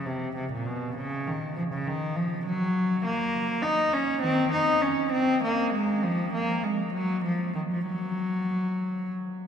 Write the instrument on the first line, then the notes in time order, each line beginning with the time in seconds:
cello
0.06 C3
0.36 C3
0.52 A#2
0.66 B2
0.97 C#3
1.27 D#3
1.57 F3
1.72 C#3
1.87 D#3
2.16 F3
2.46 F#3
3.05 A#3
3.63 D#4
3.93 C#4
4.22 D#3 C4
4.52 D#4
4.82 C#4
5.12 C4
5.44 A#3
5.73 G#3
6.03 F3
6.33 A#3
6.64 G#3
6.93 F#3
7.25 F3
7.55 D#3
7.72 F3
7.87 F#3